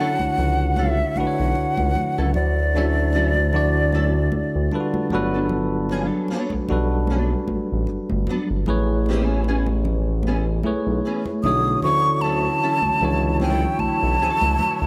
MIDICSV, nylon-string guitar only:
0, 0, Header, 1, 3, 480
1, 0, Start_track
1, 0, Key_signature, 2, "major"
1, 0, Tempo, 789474
1, 1428, Time_signature, 4, 2, 24, 8
1, 9040, End_track
2, 0, Start_track
2, 0, Title_t, "Nylon-string guitar"
2, 0, Program_c, 0, 24
2, 0, Note_on_c, 0, 54, 76
2, 0, Note_on_c, 0, 61, 70
2, 0, Note_on_c, 0, 64, 83
2, 2, Note_on_c, 0, 69, 90
2, 100, Note_off_c, 0, 54, 0
2, 103, Note_off_c, 0, 64, 0
2, 104, Note_off_c, 0, 61, 0
2, 105, Note_off_c, 0, 69, 0
2, 473, Note_on_c, 0, 54, 76
2, 473, Note_on_c, 0, 61, 75
2, 473, Note_on_c, 0, 64, 82
2, 478, Note_on_c, 0, 69, 84
2, 580, Note_off_c, 0, 54, 0
2, 581, Note_off_c, 0, 61, 0
2, 581, Note_off_c, 0, 64, 0
2, 583, Note_off_c, 0, 69, 0
2, 1325, Note_on_c, 0, 64, 60
2, 1326, Note_on_c, 0, 69, 65
2, 1333, Note_on_c, 0, 54, 52
2, 1334, Note_on_c, 0, 61, 50
2, 1394, Note_off_c, 0, 64, 0
2, 1394, Note_off_c, 0, 69, 0
2, 1398, Note_off_c, 0, 54, 0
2, 1398, Note_off_c, 0, 61, 0
2, 1674, Note_on_c, 0, 54, 73
2, 1679, Note_on_c, 0, 61, 78
2, 1681, Note_on_c, 0, 64, 76
2, 1682, Note_on_c, 0, 69, 84
2, 1894, Note_off_c, 0, 54, 0
2, 1896, Note_off_c, 0, 61, 0
2, 1897, Note_off_c, 0, 64, 0
2, 1898, Note_off_c, 0, 69, 0
2, 1912, Note_on_c, 0, 54, 83
2, 1916, Note_on_c, 0, 61, 77
2, 1920, Note_on_c, 0, 64, 89
2, 1921, Note_on_c, 0, 69, 82
2, 2020, Note_off_c, 0, 54, 0
2, 2022, Note_off_c, 0, 61, 0
2, 2024, Note_off_c, 0, 64, 0
2, 2025, Note_off_c, 0, 69, 0
2, 2393, Note_on_c, 0, 54, 76
2, 2396, Note_on_c, 0, 61, 77
2, 2399, Note_on_c, 0, 64, 79
2, 2400, Note_on_c, 0, 69, 85
2, 2501, Note_off_c, 0, 54, 0
2, 2502, Note_off_c, 0, 61, 0
2, 2503, Note_off_c, 0, 64, 0
2, 2504, Note_off_c, 0, 69, 0
2, 3246, Note_on_c, 0, 69, 56
2, 3249, Note_on_c, 0, 62, 58
2, 3252, Note_on_c, 0, 59, 53
2, 3255, Note_on_c, 0, 54, 53
2, 3314, Note_off_c, 0, 69, 0
2, 3316, Note_off_c, 0, 62, 0
2, 3317, Note_off_c, 0, 59, 0
2, 3319, Note_off_c, 0, 54, 0
2, 3591, Note_on_c, 0, 53, 77
2, 3593, Note_on_c, 0, 61, 90
2, 3594, Note_on_c, 0, 58, 73
2, 3599, Note_on_c, 0, 68, 88
2, 3682, Note_off_c, 0, 53, 0
2, 3682, Note_on_c, 0, 54, 77
2, 3685, Note_off_c, 0, 61, 0
2, 3685, Note_on_c, 0, 62, 90
2, 3686, Note_off_c, 0, 58, 0
2, 3686, Note_on_c, 0, 59, 73
2, 3690, Note_off_c, 0, 68, 0
2, 3690, Note_on_c, 0, 69, 88
2, 3812, Note_off_c, 0, 54, 0
2, 3813, Note_off_c, 0, 62, 0
2, 3814, Note_off_c, 0, 59, 0
2, 3816, Note_off_c, 0, 69, 0
2, 3831, Note_on_c, 0, 54, 75
2, 3833, Note_on_c, 0, 62, 76
2, 3837, Note_on_c, 0, 59, 82
2, 3838, Note_on_c, 0, 69, 77
2, 3962, Note_off_c, 0, 54, 0
2, 3963, Note_off_c, 0, 62, 0
2, 3965, Note_off_c, 0, 59, 0
2, 3965, Note_off_c, 0, 69, 0
2, 4316, Note_on_c, 0, 54, 75
2, 4318, Note_on_c, 0, 59, 73
2, 4320, Note_on_c, 0, 62, 77
2, 4323, Note_on_c, 0, 69, 82
2, 4445, Note_off_c, 0, 54, 0
2, 4446, Note_off_c, 0, 59, 0
2, 4446, Note_off_c, 0, 62, 0
2, 4448, Note_off_c, 0, 69, 0
2, 5042, Note_on_c, 0, 54, 82
2, 5048, Note_on_c, 0, 59, 84
2, 5049, Note_on_c, 0, 62, 84
2, 5050, Note_on_c, 0, 69, 91
2, 5145, Note_off_c, 0, 54, 0
2, 5148, Note_off_c, 0, 59, 0
2, 5148, Note_off_c, 0, 62, 0
2, 5149, Note_off_c, 0, 69, 0
2, 5524, Note_on_c, 0, 51, 82
2, 5526, Note_on_c, 0, 58, 81
2, 5531, Note_on_c, 0, 60, 82
2, 5536, Note_on_c, 0, 67, 93
2, 5615, Note_off_c, 0, 51, 0
2, 5615, Note_on_c, 0, 52, 82
2, 5616, Note_off_c, 0, 60, 0
2, 5616, Note_on_c, 0, 61, 82
2, 5617, Note_off_c, 0, 58, 0
2, 5617, Note_on_c, 0, 59, 81
2, 5621, Note_off_c, 0, 67, 0
2, 5621, Note_on_c, 0, 68, 93
2, 5739, Note_off_c, 0, 52, 0
2, 5740, Note_off_c, 0, 59, 0
2, 5742, Note_off_c, 0, 61, 0
2, 5745, Note_off_c, 0, 68, 0
2, 5763, Note_on_c, 0, 52, 72
2, 5765, Note_on_c, 0, 61, 80
2, 5766, Note_on_c, 0, 59, 77
2, 5767, Note_on_c, 0, 68, 87
2, 5866, Note_off_c, 0, 52, 0
2, 5867, Note_off_c, 0, 59, 0
2, 5867, Note_off_c, 0, 61, 0
2, 5867, Note_off_c, 0, 68, 0
2, 6242, Note_on_c, 0, 59, 81
2, 6244, Note_on_c, 0, 52, 73
2, 6248, Note_on_c, 0, 61, 73
2, 6250, Note_on_c, 0, 68, 72
2, 6345, Note_off_c, 0, 59, 0
2, 6346, Note_off_c, 0, 52, 0
2, 6348, Note_off_c, 0, 61, 0
2, 6349, Note_off_c, 0, 68, 0
2, 6718, Note_on_c, 0, 52, 70
2, 6722, Note_on_c, 0, 59, 72
2, 6728, Note_on_c, 0, 61, 84
2, 6729, Note_on_c, 0, 68, 80
2, 6823, Note_off_c, 0, 52, 0
2, 6825, Note_off_c, 0, 59, 0
2, 6828, Note_off_c, 0, 61, 0
2, 6829, Note_off_c, 0, 68, 0
2, 7436, Note_on_c, 0, 54, 67
2, 7440, Note_on_c, 0, 61, 76
2, 7443, Note_on_c, 0, 64, 76
2, 7446, Note_on_c, 0, 69, 80
2, 7655, Note_off_c, 0, 54, 0
2, 7657, Note_off_c, 0, 61, 0
2, 7658, Note_off_c, 0, 64, 0
2, 7660, Note_off_c, 0, 69, 0
2, 7673, Note_on_c, 0, 54, 72
2, 7680, Note_on_c, 0, 61, 79
2, 7682, Note_on_c, 0, 69, 85
2, 7683, Note_on_c, 0, 64, 73
2, 7780, Note_off_c, 0, 54, 0
2, 7784, Note_off_c, 0, 61, 0
2, 7785, Note_off_c, 0, 69, 0
2, 7786, Note_off_c, 0, 64, 0
2, 8153, Note_on_c, 0, 61, 76
2, 8154, Note_on_c, 0, 54, 78
2, 8159, Note_on_c, 0, 64, 75
2, 8163, Note_on_c, 0, 69, 78
2, 8283, Note_off_c, 0, 61, 0
2, 8284, Note_off_c, 0, 54, 0
2, 8286, Note_off_c, 0, 64, 0
2, 8288, Note_off_c, 0, 69, 0
2, 8641, Note_on_c, 0, 54, 62
2, 8645, Note_on_c, 0, 61, 68
2, 8645, Note_on_c, 0, 64, 65
2, 8646, Note_on_c, 0, 69, 79
2, 8767, Note_off_c, 0, 54, 0
2, 8769, Note_off_c, 0, 61, 0
2, 8769, Note_off_c, 0, 64, 0
2, 8770, Note_off_c, 0, 69, 0
2, 9040, End_track
3, 0, Start_track
3, 0, Title_t, "Muted nylon-string guitar strokes"
3, 4795, Note_on_c, 9, 29, 42
3, 4856, Note_off_c, 9, 29, 0
3, 9040, End_track
0, 0, End_of_file